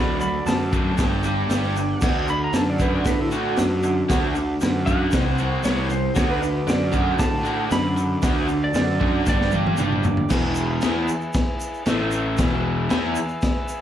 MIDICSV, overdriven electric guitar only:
0, 0, Header, 1, 2, 480
1, 0, Start_track
1, 0, Tempo, 518135
1, 1882, Time_signature, 4, 2, 24, 8
1, 12795, End_track
2, 0, Start_track
2, 0, Title_t, "Overdriven electric guitar"
2, 0, Program_c, 0, 29
2, 0, Note_on_c, 0, 50, 92
2, 0, Note_on_c, 0, 54, 93
2, 0, Note_on_c, 0, 57, 100
2, 182, Note_off_c, 0, 50, 0
2, 187, Note_off_c, 0, 54, 0
2, 190, Note_off_c, 0, 57, 0
2, 194, Note_on_c, 0, 50, 76
2, 201, Note_on_c, 0, 54, 83
2, 415, Note_off_c, 0, 50, 0
2, 418, Note_off_c, 0, 54, 0
2, 429, Note_on_c, 0, 50, 76
2, 433, Note_on_c, 0, 54, 74
2, 652, Note_off_c, 0, 50, 0
2, 654, Note_off_c, 0, 54, 0
2, 671, Note_on_c, 0, 50, 92
2, 677, Note_on_c, 0, 54, 96
2, 681, Note_on_c, 0, 57, 99
2, 898, Note_off_c, 0, 54, 0
2, 902, Note_on_c, 0, 55, 85
2, 903, Note_off_c, 0, 50, 0
2, 908, Note_off_c, 0, 57, 0
2, 909, Note_on_c, 0, 62, 101
2, 918, Note_on_c, 0, 67, 101
2, 1136, Note_off_c, 0, 62, 0
2, 1138, Note_off_c, 0, 55, 0
2, 1146, Note_off_c, 0, 67, 0
2, 1147, Note_on_c, 0, 55, 106
2, 1147, Note_on_c, 0, 62, 91
2, 1163, Note_on_c, 0, 67, 108
2, 1375, Note_off_c, 0, 55, 0
2, 1375, Note_off_c, 0, 62, 0
2, 1384, Note_off_c, 0, 67, 0
2, 1386, Note_on_c, 0, 55, 93
2, 1386, Note_on_c, 0, 62, 92
2, 1395, Note_on_c, 0, 67, 103
2, 1619, Note_off_c, 0, 62, 0
2, 1620, Note_off_c, 0, 55, 0
2, 1624, Note_off_c, 0, 67, 0
2, 1635, Note_on_c, 0, 55, 69
2, 1644, Note_on_c, 0, 62, 89
2, 1854, Note_off_c, 0, 55, 0
2, 1858, Note_off_c, 0, 62, 0
2, 1869, Note_on_c, 0, 50, 83
2, 1877, Note_on_c, 0, 62, 85
2, 1885, Note_on_c, 0, 66, 90
2, 2101, Note_off_c, 0, 50, 0
2, 2105, Note_off_c, 0, 62, 0
2, 2109, Note_off_c, 0, 66, 0
2, 2114, Note_on_c, 0, 50, 85
2, 2119, Note_on_c, 0, 62, 90
2, 2333, Note_off_c, 0, 50, 0
2, 2336, Note_off_c, 0, 62, 0
2, 2349, Note_on_c, 0, 50, 79
2, 2354, Note_on_c, 0, 62, 83
2, 2570, Note_off_c, 0, 50, 0
2, 2573, Note_off_c, 0, 62, 0
2, 2593, Note_on_c, 0, 50, 101
2, 2599, Note_on_c, 0, 62, 107
2, 2602, Note_on_c, 0, 66, 110
2, 2822, Note_off_c, 0, 50, 0
2, 2825, Note_off_c, 0, 62, 0
2, 2826, Note_off_c, 0, 66, 0
2, 2837, Note_on_c, 0, 50, 85
2, 2843, Note_on_c, 0, 62, 85
2, 3054, Note_off_c, 0, 50, 0
2, 3057, Note_off_c, 0, 62, 0
2, 3069, Note_on_c, 0, 50, 88
2, 3081, Note_on_c, 0, 62, 110
2, 3083, Note_on_c, 0, 66, 119
2, 3300, Note_off_c, 0, 50, 0
2, 3305, Note_off_c, 0, 62, 0
2, 3307, Note_off_c, 0, 66, 0
2, 3318, Note_on_c, 0, 50, 84
2, 3324, Note_on_c, 0, 62, 96
2, 3534, Note_off_c, 0, 50, 0
2, 3537, Note_off_c, 0, 62, 0
2, 3548, Note_on_c, 0, 50, 77
2, 3553, Note_on_c, 0, 62, 84
2, 3769, Note_off_c, 0, 50, 0
2, 3771, Note_off_c, 0, 62, 0
2, 3784, Note_on_c, 0, 50, 82
2, 3785, Note_on_c, 0, 62, 104
2, 3792, Note_on_c, 0, 66, 99
2, 4016, Note_off_c, 0, 50, 0
2, 4017, Note_off_c, 0, 62, 0
2, 4020, Note_off_c, 0, 66, 0
2, 4029, Note_on_c, 0, 50, 68
2, 4029, Note_on_c, 0, 62, 91
2, 4249, Note_off_c, 0, 50, 0
2, 4249, Note_off_c, 0, 62, 0
2, 4271, Note_on_c, 0, 50, 83
2, 4272, Note_on_c, 0, 62, 86
2, 4489, Note_off_c, 0, 50, 0
2, 4490, Note_off_c, 0, 62, 0
2, 4499, Note_on_c, 0, 50, 98
2, 4509, Note_on_c, 0, 62, 99
2, 4513, Note_on_c, 0, 66, 105
2, 4733, Note_off_c, 0, 50, 0
2, 4738, Note_off_c, 0, 62, 0
2, 4740, Note_off_c, 0, 66, 0
2, 4741, Note_on_c, 0, 48, 99
2, 4755, Note_on_c, 0, 55, 116
2, 4758, Note_on_c, 0, 60, 114
2, 4974, Note_off_c, 0, 48, 0
2, 4978, Note_off_c, 0, 55, 0
2, 4982, Note_off_c, 0, 60, 0
2, 4987, Note_on_c, 0, 48, 95
2, 4989, Note_on_c, 0, 55, 96
2, 4999, Note_on_c, 0, 60, 99
2, 5202, Note_off_c, 0, 48, 0
2, 5209, Note_off_c, 0, 55, 0
2, 5211, Note_off_c, 0, 60, 0
2, 5213, Note_on_c, 0, 48, 99
2, 5220, Note_on_c, 0, 55, 111
2, 5222, Note_on_c, 0, 60, 107
2, 5449, Note_off_c, 0, 48, 0
2, 5453, Note_off_c, 0, 55, 0
2, 5454, Note_off_c, 0, 60, 0
2, 5460, Note_on_c, 0, 48, 75
2, 5463, Note_on_c, 0, 55, 81
2, 5683, Note_off_c, 0, 48, 0
2, 5684, Note_off_c, 0, 55, 0
2, 5694, Note_on_c, 0, 50, 82
2, 5705, Note_on_c, 0, 62, 96
2, 5705, Note_on_c, 0, 66, 100
2, 5923, Note_off_c, 0, 50, 0
2, 5929, Note_off_c, 0, 62, 0
2, 5934, Note_off_c, 0, 66, 0
2, 5934, Note_on_c, 0, 50, 80
2, 5940, Note_on_c, 0, 62, 83
2, 6159, Note_off_c, 0, 50, 0
2, 6162, Note_off_c, 0, 62, 0
2, 6178, Note_on_c, 0, 50, 79
2, 6180, Note_on_c, 0, 62, 92
2, 6401, Note_off_c, 0, 50, 0
2, 6402, Note_off_c, 0, 62, 0
2, 6412, Note_on_c, 0, 62, 103
2, 6413, Note_on_c, 0, 50, 96
2, 6427, Note_on_c, 0, 66, 114
2, 6638, Note_off_c, 0, 50, 0
2, 6645, Note_off_c, 0, 62, 0
2, 6649, Note_on_c, 0, 50, 84
2, 6655, Note_off_c, 0, 66, 0
2, 6656, Note_on_c, 0, 62, 95
2, 6876, Note_off_c, 0, 50, 0
2, 6880, Note_off_c, 0, 62, 0
2, 6889, Note_on_c, 0, 50, 92
2, 6898, Note_on_c, 0, 62, 94
2, 6902, Note_on_c, 0, 66, 108
2, 7122, Note_off_c, 0, 50, 0
2, 7123, Note_off_c, 0, 62, 0
2, 7132, Note_off_c, 0, 66, 0
2, 7134, Note_on_c, 0, 50, 85
2, 7135, Note_on_c, 0, 62, 93
2, 7358, Note_off_c, 0, 50, 0
2, 7359, Note_off_c, 0, 62, 0
2, 7377, Note_on_c, 0, 50, 75
2, 7380, Note_on_c, 0, 62, 82
2, 7600, Note_off_c, 0, 50, 0
2, 7601, Note_off_c, 0, 62, 0
2, 7616, Note_on_c, 0, 50, 84
2, 7621, Note_on_c, 0, 62, 92
2, 7628, Note_on_c, 0, 66, 100
2, 7841, Note_off_c, 0, 50, 0
2, 7843, Note_off_c, 0, 62, 0
2, 7852, Note_on_c, 0, 50, 80
2, 7854, Note_on_c, 0, 62, 99
2, 7855, Note_off_c, 0, 66, 0
2, 8077, Note_off_c, 0, 50, 0
2, 8078, Note_off_c, 0, 62, 0
2, 8102, Note_on_c, 0, 50, 74
2, 8109, Note_on_c, 0, 62, 85
2, 8322, Note_off_c, 0, 50, 0
2, 8326, Note_off_c, 0, 62, 0
2, 8335, Note_on_c, 0, 50, 108
2, 8345, Note_on_c, 0, 62, 106
2, 8349, Note_on_c, 0, 66, 105
2, 8568, Note_off_c, 0, 50, 0
2, 8573, Note_off_c, 0, 62, 0
2, 8575, Note_off_c, 0, 66, 0
2, 8576, Note_on_c, 0, 55, 109
2, 8584, Note_on_c, 0, 62, 111
2, 8592, Note_on_c, 0, 67, 111
2, 8805, Note_off_c, 0, 55, 0
2, 8813, Note_off_c, 0, 62, 0
2, 8816, Note_on_c, 0, 55, 95
2, 8817, Note_off_c, 0, 67, 0
2, 8825, Note_on_c, 0, 62, 99
2, 8827, Note_on_c, 0, 67, 117
2, 9049, Note_off_c, 0, 55, 0
2, 9053, Note_off_c, 0, 62, 0
2, 9055, Note_off_c, 0, 67, 0
2, 9060, Note_on_c, 0, 55, 92
2, 9067, Note_on_c, 0, 62, 107
2, 9072, Note_on_c, 0, 67, 109
2, 9291, Note_off_c, 0, 55, 0
2, 9295, Note_off_c, 0, 62, 0
2, 9297, Note_off_c, 0, 67, 0
2, 9307, Note_on_c, 0, 55, 77
2, 9314, Note_on_c, 0, 62, 83
2, 9526, Note_off_c, 0, 55, 0
2, 9529, Note_off_c, 0, 62, 0
2, 9538, Note_on_c, 0, 40, 86
2, 9547, Note_on_c, 0, 47, 104
2, 9553, Note_on_c, 0, 52, 97
2, 10016, Note_off_c, 0, 52, 0
2, 10019, Note_off_c, 0, 40, 0
2, 10023, Note_off_c, 0, 47, 0
2, 10027, Note_on_c, 0, 52, 82
2, 10037, Note_on_c, 0, 59, 93
2, 10040, Note_on_c, 0, 64, 105
2, 10263, Note_off_c, 0, 52, 0
2, 10268, Note_off_c, 0, 59, 0
2, 10270, Note_off_c, 0, 64, 0
2, 10996, Note_on_c, 0, 45, 88
2, 10997, Note_on_c, 0, 52, 105
2, 11002, Note_on_c, 0, 57, 100
2, 11463, Note_off_c, 0, 52, 0
2, 11468, Note_off_c, 0, 45, 0
2, 11469, Note_on_c, 0, 40, 96
2, 11472, Note_on_c, 0, 47, 100
2, 11474, Note_off_c, 0, 57, 0
2, 11474, Note_on_c, 0, 52, 109
2, 11935, Note_off_c, 0, 52, 0
2, 11942, Note_off_c, 0, 47, 0
2, 11946, Note_on_c, 0, 52, 87
2, 11949, Note_off_c, 0, 40, 0
2, 11953, Note_on_c, 0, 59, 107
2, 11962, Note_on_c, 0, 64, 114
2, 12187, Note_off_c, 0, 52, 0
2, 12191, Note_off_c, 0, 59, 0
2, 12195, Note_off_c, 0, 64, 0
2, 12795, End_track
0, 0, End_of_file